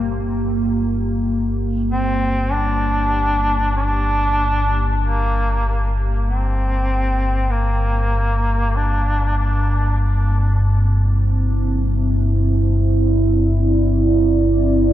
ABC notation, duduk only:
X:1
M:4/4
L:1/8
Q:1/4=48
K:Gdor
V:1 name="Duduk"
z3 C D2 D2 | B,2 C2 B,2 D D | z8 |]